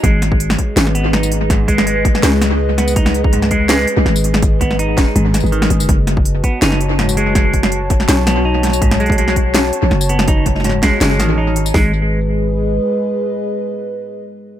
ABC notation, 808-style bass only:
X:1
M:4/4
L:1/16
Q:"Swing 16ths" 1/4=164
K:G#phr
V:1 name="808-style bass" clef=bass
G,,,6 z2 G,,,8- | G,,,8 C,,8- | C,,8- C,,2 z B,,, G,,,4- | G,,,6 D,,, z G,,,3 G,,,3 G,,, F,,, |
F,,,6 z2 F,,,8- | F,,,8 B,,,8- | B,,,8- B,,,2 z A,,, F,,,4- | F,,,6 C,, z F,,,2 A,,,4 G,,,2 |
G,,,12 z4 | z16 |]